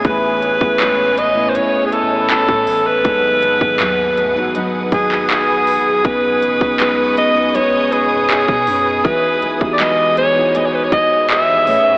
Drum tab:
HH |x-x-x-x-x-x-x-o-|x-x-x-x-x-x-x-o-|x-x-x-x-x-x-x-o-|x-x-x-x-x-x-x-o-|
CP |----x-------x---|----x------xx---|----x-------x---|----x-------x---|
BD |o--o---------o--|o--o------o-----|o--o---------o--|o--o------o-----|